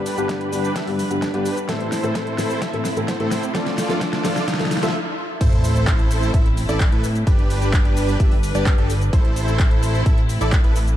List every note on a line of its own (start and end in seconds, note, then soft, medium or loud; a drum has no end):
0.00 0.73 G1 loud
0.00 1.67 G3 medium
0.00 0.73 D4 medium
0.00 1.67 D4 medium
0.00 0.73 G4 medium
0.00 0.73 B4 medium
0.00 1.67 B4 medium
0.00 riser medium
0.06 open hi-hat loud
0.06 shaker medium
0.17 0.49 G2 medium
0.17 0.50 D3 medium
0.17 0.50 G3 medium
0.17 0.50 B3 medium
0.17 0.50 G4 loud
0.17 closed hi-hat soft
0.17 shaker soft
0.29 kick loud
0.29 snare medium
0.29 closed hi-hat medium
0.29 shaker soft
0.41 closed hi-hat soft
0.52 0.62 G2 medium
0.52 0.62 D3 medium
0.52 0.63 G3 medium
0.52 0.63 B3 medium
0.52 0.63 G4 medium
0.52 open hi-hat loud
0.52 shaker medium
0.64 shaker soft
0.76 0.88 G1 medium
0.76 0.90 D4 medium
0.76 0.90 G4 medium
0.76 0.90 E5 medium
0.76 kick loud
0.76 snare medium
0.76 closed hi-hat medium
0.76 shaker soft
0.87 0.97 G2 medium
0.87 0.97 D3 medium
0.87 0.97 G3 medium
0.87 0.98 B3 medium
0.87 0.98 G4 loud
0.87 open hi-hat medium
0.99 open hi-hat loud
0.99 shaker medium
1.10 1.20 G2 medium
1.10 1.20 D3 medium
1.10 1.21 G3 medium
1.10 1.21 B3 medium
1.10 1.21 G4 loud
1.10 closed hi-hat soft
1.10 shaker soft
1.22 1.32 G1 loud
1.22 1.32 D4 medium
1.22 1.32 G4 medium
1.22 1.32 B4 medium
1.22 kick loud
1.22 snare medium
1.22 closed hi-hat medium
1.22 shaker soft
1.33 1.66 G1 loud
1.33 1.44 G2 loud
1.33 1.44 D3 medium
1.33 1.44 G3 medium
1.33 1.44 B3 medium
1.33 1.57 D4 loud
1.33 1.57 G4 medium
1.33 1.44 G4 loud
1.33 1.57 B4 loud
1.33 closed hi-hat soft
1.46 open hi-hat loud
1.46 shaker medium
1.57 closed hi-hat soft
1.57 shaker soft
1.68 2.59 A1 loud
1.68 1.85 A2 medium
1.68 1.85 E3 medium
1.68 1.85 A3 medium
1.68 4.91 A3 medium
1.68 3.53 C4 medium
1.68 1.85 C4 medium
1.68 3.53 E4 medium
1.68 2.59 E4 medium
1.68 2.59 A4 medium
1.68 1.85 A4 loud
1.68 2.59 C5 medium
1.68 kick loud
1.68 snare medium
1.68 closed hi-hat medium
1.68 shaker soft
1.80 closed hi-hat soft
1.92 snare medium
1.92 open hi-hat loud
1.92 shaker medium
2.03 2.35 A2 loud
2.03 2.36 E3 medium
2.03 2.36 A3 medium
2.03 2.36 C4 medium
2.03 2.36 A4 loud
2.03 closed hi-hat soft
2.03 shaker soft
2.15 kick loud
2.15 snare medium
2.15 closed hi-hat medium
2.15 shaker soft
2.27 closed hi-hat soft
2.38 2.48 A2 medium
2.38 2.48 E3 medium
2.38 2.49 A3 medium
2.38 2.49 C4 medium
2.38 2.49 A4 medium
2.38 snare medium
2.38 open hi-hat loud
2.38 shaker medium
2.50 shaker soft
2.62 2.74 A1 loud
2.62 2.76 E4 medium
2.62 2.76 A4 medium
2.62 2.76 E5 medium
2.62 kick loud
2.62 snare medium
2.62 closed hi-hat medium
2.62 shaker soft
2.73 2.83 A2 medium
2.73 2.83 E3 medium
2.73 2.84 A3 medium
2.73 2.84 C4 medium
2.73 2.84 A4 loud
2.73 closed hi-hat soft
2.85 snare medium
2.85 open hi-hat loud
2.85 shaker medium
2.96 3.06 A2 medium
2.96 3.07 E3 medium
2.96 3.07 A3 medium
2.96 3.07 C4 medium
2.96 3.07 A4 loud
2.96 closed hi-hat soft
2.96 shaker soft
3.08 3.18 A1 loud
3.08 3.18 E4 medium
3.08 3.18 A4 medium
3.08 3.18 C5 medium
3.08 kick loud
3.08 snare medium
3.08 closed hi-hat medium
3.08 shaker soft
3.19 3.30 A2 loud
3.19 3.52 A2 loud
3.19 3.30 E3 medium
3.19 3.30 A3 medium
3.19 3.30 C4 medium
3.19 3.43 E4 loud
3.19 3.43 A4 medium
3.19 3.30 A4 loud
3.19 3.43 C5 loud
3.19 closed hi-hat soft
3.31 snare medium
3.31 open hi-hat loud
3.31 shaker medium
3.43 closed hi-hat soft
3.43 shaker soft
3.54 4.45 D2 loud
3.54 4.93 D3 medium
3.54 3.71 F3 medium
3.54 3.71 A3 medium
3.54 3.71 D4 medium
3.54 4.45 F4 medium
3.54 4.93 F4 medium
3.54 4.45 A4 medium
3.54 3.71 A4 loud
3.54 4.45 D5 medium
3.54 kick loud
3.54 snare medium
3.54 closed hi-hat medium
3.54 shaker soft
3.66 snare medium
3.66 closed hi-hat soft
3.78 snare loud
3.78 open hi-hat loud
3.78 shaker medium
3.89 4.21 F3 loud
3.89 4.22 A3 medium
3.89 4.22 D4 medium
3.89 4.22 A4 loud
3.89 snare medium
3.89 closed hi-hat soft
3.89 shaker soft
4.01 kick loud
4.01 snare loud
4.01 closed hi-hat medium
4.01 shaker soft
4.13 snare medium
4.13 closed hi-hat soft
4.24 4.34 F3 medium
4.24 4.35 A3 medium
4.24 4.35 D4 medium
4.24 4.35 A4 medium
4.24 snare loud
4.24 open hi-hat loud
4.24 shaker medium
4.36 snare medium
4.36 shaker soft
4.48 4.80 D2 medium
4.48 4.62 F4 medium
4.48 4.62 A4 medium
4.48 4.62 F5 medium
4.48 kick loud
4.48 snare loud
4.48 closed hi-hat medium
4.48 shaker soft
4.54 snare medium
4.59 4.69 F3 medium
4.59 4.69 A3 medium
4.59 4.70 D4 medium
4.59 4.70 A4 loud
4.59 snare medium
4.59 open hi-hat medium
4.65 snare medium
4.71 snare loud
4.71 open hi-hat loud
4.71 shaker medium
4.77 snare medium
4.82 4.94 D2 loud
4.82 4.92 F3 medium
4.82 4.93 A3 medium
4.82 4.93 D4 medium
4.82 4.94 F4 medium
4.82 4.94 A4 medium
4.82 4.93 A4 loud
4.82 4.94 E5 loud
4.82 snare loud
4.82 closed hi-hat soft
4.82 shaker soft
4.89 snare loud
5.41 6.32 A1 loud
5.41 7.25 A3 medium
5.41 7.25 C4 medium
5.41 6.31 E4 medium
5.41 7.25 E4 medium
5.41 6.31 A4 medium
5.41 6.31 C5 medium
5.41 kick loud
5.41 closed hi-hat loud
5.41 crash loud
5.41 sub drop medium
5.41 shaker soft
5.53 closed hi-hat soft
5.64 open hi-hat loud
5.64 shaker medium
5.76 closed hi-hat soft
5.76 shaker soft
5.87 kick loud
5.87 clap loud
5.87 closed hi-hat medium
5.87 shaker soft
5.99 closed hi-hat soft
6.11 open hi-hat loud
6.11 shaker medium
6.23 shaker soft
6.34 6.66 A1 medium
6.34 6.48 E4 medium
6.34 6.48 A4 medium
6.34 6.48 E5 medium
6.34 kick loud
6.34 closed hi-hat loud
6.34 shaker soft
6.46 closed hi-hat soft
6.57 open hi-hat loud
6.57 shaker medium
6.69 6.90 A1 loud
6.69 6.89 E4 medium
6.69 6.89 A4 medium
6.69 6.89 D5 loud
6.69 closed hi-hat soft
6.69 shaker soft
6.80 kick loud
6.80 clap loud
6.80 closed hi-hat loud
6.80 shaker soft
6.92 7.25 A2 medium
6.92 7.06 E4 medium
6.92 7.06 A4 medium
6.92 7.06 B4 medium
6.92 closed hi-hat soft
7.04 open hi-hat loud
7.04 shaker medium
7.15 closed hi-hat soft
7.15 shaker soft
7.27 8.18 G1 loud
7.27 9.11 G3 medium
7.27 8.17 D4 medium
7.27 9.11 D4 medium
7.27 8.17 G4 medium
7.27 8.17 B4 medium
7.27 9.11 B4 medium
7.27 kick loud
7.27 closed hi-hat medium
7.27 shaker soft
7.39 closed hi-hat soft
7.50 open hi-hat loud
7.50 shaker medium
7.62 closed hi-hat soft
7.62 shaker soft
7.73 kick loud
7.73 clap loud
7.73 closed hi-hat medium
7.73 shaker soft
7.85 closed hi-hat soft
7.97 open hi-hat loud
7.97 shaker medium
8.09 shaker soft
8.20 8.52 G1 medium
8.20 8.34 D4 medium
8.20 8.34 G4 medium
8.20 8.34 E5 medium
8.20 kick loud
8.20 closed hi-hat loud
8.20 shaker soft
8.32 open hi-hat medium
8.43 open hi-hat loud
8.43 shaker medium
8.55 8.76 G1 loud
8.55 8.75 D4 medium
8.55 8.75 G4 medium
8.55 8.75 D5 loud
8.55 closed hi-hat soft
8.55 shaker soft
8.66 kick loud
8.66 clap loud
8.66 closed hi-hat loud
8.66 shaker soft
8.78 9.11 G1 loud
8.78 8.93 D4 medium
8.78 8.93 G4 medium
8.78 8.93 A4 medium
8.78 closed hi-hat soft
8.90 open hi-hat loud
8.90 shaker medium
9.01 closed hi-hat soft
9.01 shaker soft
9.13 10.04 A1 loud
9.13 10.97 A3 medium
9.13 10.97 C4 medium
9.13 10.03 E4 medium
9.13 10.97 E4 medium
9.13 10.03 A4 medium
9.13 10.03 C5 medium
9.13 kick loud
9.13 closed hi-hat medium
9.13 shaker soft
9.25 closed hi-hat soft
9.36 open hi-hat loud
9.36 shaker medium
9.48 closed hi-hat soft
9.48 shaker soft
9.59 kick loud
9.59 clap loud
9.59 closed hi-hat medium
9.59 shaker soft
9.71 closed hi-hat soft
9.83 open hi-hat loud
9.83 shaker medium
9.95 shaker soft
10.06 10.39 A1 medium
10.06 10.20 E4 medium
10.06 10.20 A4 medium
10.06 10.20 E5 medium
10.06 kick loud
10.06 closed hi-hat loud
10.06 shaker soft
10.18 closed hi-hat soft
10.29 open hi-hat loud
10.29 shaker medium
10.41 10.62 A1 loud
10.41 10.61 E4 medium
10.41 10.61 A4 medium
10.41 10.61 D5 loud
10.41 closed hi-hat soft
10.41 shaker soft
10.52 kick loud
10.52 clap loud
10.52 closed hi-hat loud
10.52 shaker soft
10.64 10.97 A1 loud
10.64 10.79 E4 medium
10.64 10.79 A4 medium
10.64 10.79 B4 medium
10.64 closed hi-hat soft
10.76 open hi-hat loud
10.76 shaker medium
10.87 closed hi-hat soft
10.87 shaker soft